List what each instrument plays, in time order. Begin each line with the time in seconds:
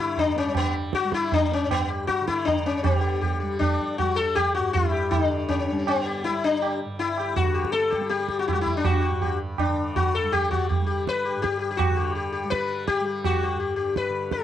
Already playing: tanpura G2 D3 G3
0.00 sitar E4
0.17 sitar D4, tabla tin, tabla ge
0.36 sitar C#4, tabla te
0.47 tanpura G3
0.55 sitar B3, tabla na, tabla ge
0.93 sitar F#4, tabla ke
1.04 tanpura G3
1.12 sitar E4, tabla ke
1.32 sitar D4, tabla tin, tabla ge
1.52 sitar C#4, tabla te
1.64 tanpura G2
1.71 sitar B3, tabla na, tabla ge
1.90 sitar G4
2.07 sitar F#4, tabla ke
2.21 tanpura D3
2.27 sitar E4, tabla ke
2.45 sitar D4, tabla tin, tabla ge
2.66 sitar C#4, tabla te
2.83 tanpura D3, sitar B3 G4, tabla na, tabla ge
3.01 sitar G4
3.21 sitar G4, tabla tin, tabla ge
3.40 tanpura G3, sitar G4
3.59 sitar D4, tabla na, tabla ge
3.80 tabla ge
3.98 tanpura G3, sitar F#4, tabla tin, tabla ge
4.16 sitar A4
4.35 sitar G4, tabla na, tabla ge
4.55 tanpura G2, sitar F#4
4.73 sitar E4, tabla tin, tabla ge
4.91 sitar G4
5.11 sitar D4, tabla na, tabla ge
5.15 tanpura D3
5.48 sitar C#4, tabla tin, tabla ge
5.71 tanpura G3
5.87 sitar B3, tabla na
6.06 sitar G4
6.24 sitar E4, tabla tin
6.30 tanpura G3
6.44 sitar D4
6.62 sitar G4, tabla na
6.85 tanpura G2
6.99 sitar E4, tabla tin
7.17 sitar G4, tabla na
7.36 sitar F#4, tabla tin, tabla ge
7.41 tanpura D3
7.54 sitar G4, tabla na
7.65 tabla ke
7.72 sitar A4, tabla te
7.82 tabla te
7.90 sitar G4, tabla ke
7.97 tanpura G3, tabla te
8.09 sitar G4, tabla te
8.20 tabla te
8.28 tabla ke
8.39 sitar F#4, tabla te
8.48 sitar E4, tabla na, tabla ge
8.53 tanpura G3, sitar F#4
8.61 sitar E4
8.66 tabla ge
8.77 sitar D4
8.85 sitar F#4, tabla na, tabla ge
9.02 sitar G4
9.10 tanpura G2
9.21 sitar G4, tabla tin, tabla ge
9.58 sitar D4, tabla na, tabla ge
9.68 tanpura D3
9.96 sitar F#4, tabla tin, tabla ge
10.15 sitar A4
10.24 tanpura G3
10.32 sitar G4, tabla na, tabla ge
10.51 sitar F#4, tabla ge
10.69 sitar G4, tabla tin, tabla ge
10.80 tanpura G3
10.86 sitar G4
11.07 sitar B4, tabla ke
11.25 sitar G4
11.36 tanpura G2
11.42 sitar G4, tabla ke
11.59 sitar G4
11.71 sitar G4
11.77 sitar F#4, tabla na, tabla ge
11.90 tanpura D3
11.96 sitar G4
12.15 sitar G4
12.32 sitar G4
12.44 tanpura G3
12.50 sitar B4, tabla ke
12.87 sitar G4, tabla ke
13.00 tanpura G3
13.06 sitar G4
13.24 sitar F#4, tabla na, tabla ge
13.43 sitar G4
13.55 tanpura G2
13.60 sitar G4
13.76 sitar G4
13.96 sitar B4, tabla ke
14.10 tanpura D3
14.31 sitar G4, tabla ke